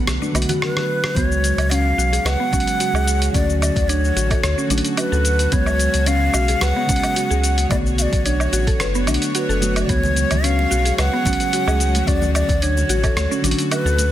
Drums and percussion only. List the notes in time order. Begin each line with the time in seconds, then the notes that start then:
0.07 cross-stick, closed hi-hat, shaker
0.22 high conga, shaker
0.35 closed hi-hat, low woodblock, shaker
0.42 closed hi-hat
0.49 closed hi-hat, low conga, shaker
0.62 cross-stick
0.77 cross-stick
1.04 cross-stick
1.16 kick, closed hi-hat, shaker
1.32 shaker
1.44 closed hi-hat, shaker
1.58 closed hi-hat, low woodblock, shaker
1.71 closed hi-hat, shaker
2.00 shaker
2.13 closed hi-hat, shaker
2.26 cross-stick, closed hi-hat, low woodblock, shaker
2.53 kick, closed hi-hat, shaker
2.60 closed hi-hat
2.67 closed hi-hat, shaker
2.80 closed hi-hat, shaker
2.95 low woodblock, shaker
3.07 closed hi-hat, shaker
3.22 closed hi-hat, shaker
3.34 kick, closed hi-hat, shaker
3.50 shaker
3.62 closed hi-hat, low woodblock, shaker
3.76 kick, closed hi-hat, shaker
3.89 closed hi-hat, shaker
4.04 shaker
4.17 closed hi-hat, shaker
4.31 kick, closed hi-hat, low woodblock, shaker
4.43 cross-stick, closed hi-hat, shaker
4.58 shaker
4.70 closed hi-hat, shaker
4.78 closed hi-hat
4.84 closed hi-hat, shaker
4.97 closed hi-hat, low woodblock, shaker
5.13 shaker
5.25 closed hi-hat, shaker
5.39 closed hi-hat, shaker
5.52 kick, closed hi-hat, shaker
5.66 low woodblock, shaker
5.79 closed hi-hat, shaker
5.94 closed hi-hat, shaker
6.06 closed hi-hat, shaker
6.34 low woodblock, shaker
6.48 closed hi-hat, shaker
6.61 cross-stick, closed hi-hat, shaker
6.89 kick, closed hi-hat, shaker
6.96 closed hi-hat
7.03 closed hi-hat, low woodblock, shaker
7.16 closed hi-hat, shaker
7.31 shaker
7.44 closed hi-hat, shaker
7.58 closed hi-hat, shaker
7.71 kick, closed hi-hat, low woodblock, shaker
7.86 shaker
7.98 closed hi-hat, shaker
8.13 kick, closed hi-hat, shaker
8.26 closed hi-hat, shaker
8.40 low woodblock, shaker
8.53 closed hi-hat, shaker
8.67 kick, closed hi-hat, shaker
8.80 cross-stick, closed hi-hat, shaker
8.95 shaker
9.07 closed hi-hat, low woodblock, shaker
9.14 closed hi-hat
9.22 closed hi-hat, shaker
9.35 closed hi-hat, shaker
9.50 shaker
9.62 closed hi-hat, shaker
9.76 closed hi-hat, low woodblock, shaker
9.89 kick, closed hi-hat, shaker
10.03 muted conga, low conga, shaker
10.16 closed hi-hat, shaker
10.31 closed hi-hat, high conga, low conga, low woodblock, shaker
10.44 closed hi-hat, shaker
10.59 muted conga
10.72 muted conga, shaker
10.86 closed hi-hat, shaker
10.98 cross-stick, closed hi-hat, low woodblock, shaker
11.25 kick, closed hi-hat, muted conga, shaker
11.33 closed hi-hat
11.40 closed hi-hat, high conga, shaker
11.53 closed hi-hat, shaker
11.67 high conga, low woodblock, shaker
11.80 closed hi-hat, shaker
11.95 closed hi-hat, muted conga, high conga, shaker
12.07 kick, closed hi-hat, shaker
12.22 muted conga, low conga, shaker
12.35 closed hi-hat, low woodblock, shaker
12.48 kick, closed hi-hat, high conga, low conga, shaker
12.62 closed hi-hat, shaker
12.77 muted conga, shaker
12.89 closed hi-hat, muted conga, shaker
13.03 kick, closed hi-hat, low woodblock, shaker
13.17 cross-stick, closed hi-hat, high conga, shaker
13.32 shaker
13.44 closed hi-hat, high conga, shaker
13.51 closed hi-hat
13.58 closed hi-hat, shaker
13.71 closed hi-hat, low woodblock, shaker
13.87 shaker
13.97 closed hi-hat, high conga, shaker